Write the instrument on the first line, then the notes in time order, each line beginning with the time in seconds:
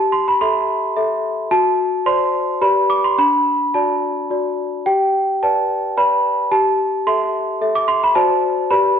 celesta
Already playing: G4 A5
0.12 C6
0.28 B5
0.41 A4 E5 C6
0.96 A4 E5
1.51 F#4 A5
2.06 C5 D5 C6
2.61 G4 B4 D5 B5
2.90 D6
3.04 C6
3.18 D4 B5
3.74 F#4 D5 A5
4.30 F#4 D5
4.86 G4 G5
5.43 B4 D5 A5
5.97 B4 D5 B5
6.52 G4 A5
7.07 A4 E5 C6
7.61 A4 E5
7.75 D6
7.88 C6
8.03 B5
8.15 F#4 C5 D5 A5
8.71 G4 B4 D5 B5